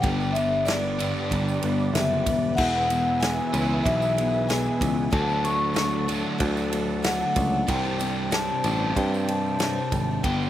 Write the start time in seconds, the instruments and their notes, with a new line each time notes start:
Already playing: accordion G4 D5 D6
0.01 picked electric bass G1, steel-string acoustic guitar G2 D3 G3 B3 D4 G4, vibraphone G5, kick, ride, tambourine
0.06 accordion B4
0.20 tambourine
0.32 steel-string acoustic guitar B3 D4 G4, vibraphone E5, ride, tambourine
0.37 steel-string acoustic guitar G3
0.65 steel-string acoustic guitar G2 D3 G3 B3 D4 G4, vibraphone D5, snare, ride, tambourine
0.84 tambourine
0.99 overdriven electric guitar G2 D3 G3 B3 D4 G4, ride, tambourine
1.16 tambourine
1.30 picked electric bass G1, steel-string acoustic guitar G3 B3 D4 G4, kick, ride, tambourine
1.48 tambourine
1.62 picked electric bass G1, steel-string acoustic guitar G3 B3 D4 G4, ride, tambourine
1.79 tambourine
1.93 picked electric bass F#1, steel-string acoustic guitar D3 G3 B3 D4 G4, vibraphone E5, snare, ride, tambourine
2.26 picked electric bass E1, steel-string acoustic guitar G3 B3 D4 G4, kick, ride, tambourine
2.43 tambourine
2.55 picked electric bass E1, steel-string acoustic guitar E2 B2 E3 B3 E4 G#4, accordion E5 G#5 E6, vibraphone F#5, kick, crash
2.76 tambourine
2.88 steel-string acoustic guitar E3 B3 E4 G#4, ride, tambourine
3.20 steel-string acoustic guitar E2 B2 E3 B3 E4 G#4, vibraphone G#5, snare, ride, tambourine
3.53 picked electric bass C#2, overdriven electric guitar E2 B2 E3 B3 E4 G#4, ride, tambourine
3.83 picked electric bass B1, steel-string acoustic guitar E3 B3 E4 G#4, vibraphone E5, kick, ride, tambourine
4.02 tambourine
4.17 steel-string acoustic guitar E3 B3 E4 G#4, ride, tambourine
4.34 tambourine
4.48 steel-string acoustic guitar E2 B2 E3 B3 E4 G#4, vibraphone G#5, snare, ride, tambourine
4.66 tambourine
4.80 picked electric bass C#2, steel-string acoustic guitar E3 B3 E4 G#4, kick, ride, tambourine
4.97 tambourine
5.11 picked electric bass D2, steel-string acoustic guitar D3 F#3 A3 D4 F#4, accordion A4 D5 F#5 A5, vibraphone A5, kick, ride
5.30 tambourine
5.44 steel-string acoustic guitar A3 D4 F#4, vibraphone C#6, ride, tambourine
5.74 steel-string acoustic guitar D3 F#3 A3 D4 F#4, snare, ride, tambourine
6.08 overdriven electric guitar D3 F#3 A3 D4 F#4, ride, tambourine
6.38 picked electric bass D2, steel-string acoustic guitar F#3 A3 D4 F#4, kick, ride, tambourine
6.57 tambourine
6.72 steel-string acoustic guitar A3 D4 F#4, ride, tambourine
6.90 tambourine
7.03 steel-string acoustic guitar D3 F#3 A3 D4 F#4, vibraphone F#5, snare, ride, tambourine
7.34 picked electric bass C#2, steel-string acoustic guitar A3 D4 F#4, kick, ride, tambourine
7.53 tambourine
7.67 picked electric bass C2, steel-string acoustic guitar C3 G3 C4 D4 G4, accordion C5 G5, vibraphone G5, kick, ride
7.85 tambourine
7.98 steel-string acoustic guitar C4 D4 G4, ride, tambourine
8.31 steel-string acoustic guitar C3 G3 C4 D4 G4, vibraphone A5, snare, ride, tambourine
8.64 picked electric bass A1, overdriven electric guitar C3 G3 C4 D4 G4, ride, tambourine
8.95 picked electric bass G2, steel-string acoustic guitar G3 C4 D4 G4, vibraphone G5, kick, ride, tambourine
9.14 tambourine
9.27 steel-string acoustic guitar C4 D4 G4, vibraphone A5, ride, tambourine
9.46 tambourine
9.59 steel-string acoustic guitar C3 G3 C4 D4 G4, snare, ride, tambourine
9.78 tambourine
9.91 picked electric bass G#1, steel-string acoustic guitar C4 D4 G4, kick, ride, tambourine
10.10 tambourine
10.23 picked electric bass G1, steel-string acoustic guitar G2 D3 G3 B3 D4 G4, accordion B4 D5 D6, vibraphone G5, kick, ride
10.42 tambourine